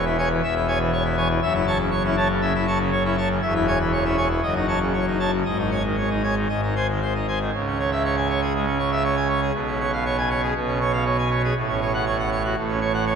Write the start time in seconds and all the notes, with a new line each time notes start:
Already playing: E1 E2
0.06 E4
0.18 C#5 G#5
0.31 E3
0.43 E1 E2 E5
0.56 E4
0.68 C#5 G#5
0.80 E3
0.92 C#5
1.05 E4
1.17 C#5 G#5
1.30 E3
1.42 F#1 F#2 E5
1.54 E4
1.67 C#5 A5
1.79 C#3
1.91 C#5
2.04 C#4 E4
2.17 C#5 A5
2.30 C#3
2.42 C#3 E5
2.55 E4
2.67 C#5 A5
2.80 C#3
2.92 C#5
3.05 C#4 E4
3.17 C#5 A5
3.30 C#3
3.42 E1 E2 E5
3.55 E4
3.67 C#5 G#5
3.80 E3
3.92 C#5
4.05 C#4 E4
4.17 C#5 G#5
4.30 E3
4.43 F#1 F#2 D#5
4.55 D#4
4.68 C#5 A5
4.81 C#3
4.93 C#5
5.07 D#4
5.19 C#5 A5
5.32 C#3
5.45 G#1 G#2 D#5
5.58 D#4
5.71 C#5 G#5
5.84 D#3
5.97 C#5
6.10 D#4
6.23 C#5 G#5
6.37 D#3
6.49 G#1 G#2 D#5
6.63 D#4
6.76 C5 G#5
6.89 D#3
7.02 C5
7.15 D#4
7.28 C5 G#5
7.41 D#3
7.54 C#2 C#3
7.67 C#4
7.79 C#5
7.92 E5
8.05 C#5
8.17 G#5
8.29 C#5
8.42 G#4
8.54 G#3
8.67 C#4
8.79 C#5
8.92 E5
9.04 C#5
9.17 G#5
9.29 C#5
9.42 G#4
9.54 B1 B2
9.67 C#4
9.80 C#5
9.93 F5
10.05 C#5
10.18 G#5
10.30 C#5
10.43 G#4
10.55 B1 B2
10.67 C#4
10.81 C#5
10.93 F5
11.06 C#5
11.18 G#5
11.31 C#5
11.44 G#4
11.56 A1 A2
11.69 C#4
11.81 C#5
11.94 F#5
12.06 C#5
12.19 F#5
12.32 C#5
12.44 F#4
12.57 A1 A2
12.68 C#4
12.81 C#5
12.94 F#5
13.06 C#5